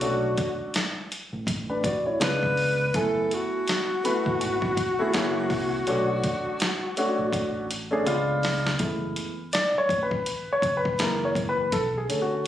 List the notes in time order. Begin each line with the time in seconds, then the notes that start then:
Already playing: F#4
0.01 B1 A3 C#4 D4 F#4, closed hi-hat
0.38 kick, closed hi-hat
0.74 snare, closed hi-hat
1.12 closed hi-hat
1.33 A1
1.47 kick, closed hi-hat
1.70 D4 B4
1.84 F#4 D5, kick, closed hi-hat
2.06 E4 C#5
2.20 C#2 G#3 B3 D4 F4, snare, closed hi-hat
2.24 B4
2.43 kick
2.57 open hi-hat
2.94 F#1 A3 B3 E4 A4 G#5, kick, closed hi-hat
3.31 F#4, closed hi-hat
3.68 snare, closed hi-hat
4.04 A3 B3 E4 B4, closed hi-hat
4.26 G#1, kick
4.40 G#1, closed hi-hat
4.62 kick
4.77 kick, closed hi-hat
4.99 A3 B3 E4 G#4
5.14 F#1 A#3 C#4 E4 G#4, snare, closed hi-hat
5.50 C2, kick, snare, open hi-hat
5.87 B1 A3 C#4 D4 F#4, closed hi-hat
6.24 kick, closed hi-hat
6.60 snare, closed hi-hat
6.97 A3 C#4 D4 F#4, closed hi-hat
7.19 A1
7.33 kick, closed hi-hat
7.71 closed hi-hat
7.91 A3 C#4 D4 G#4
8.05 C#2 G#3 B3 D4 F4, closed hi-hat
8.43 snare, open hi-hat
8.67 snare
8.79 F#1 E3 G#3 A3 B3, kick, closed hi-hat
9.16 closed hi-hat
9.53 D5, snare, closed hi-hat
9.75 C#5, muted fingered electric bass stroke
9.89 A1, kick, closed hi-hat
10.03 B4
10.11 kick
10.26 closed hi-hat
10.47 muted fingered electric bass stroke
10.53 C#5
10.62 F#1, kick, closed hi-hat
10.77 B4
10.85 kick
10.99 F#1 E3 G#3 A#3 A#4, snare, closed hi-hat
11.25 C#5
11.35 kick, closed hi-hat
11.49 B4
11.72 B1 A4, kick, closed hi-hat
11.98 G#4
12.09 D3 A3 C#4, closed hi-hat
12.22 F#4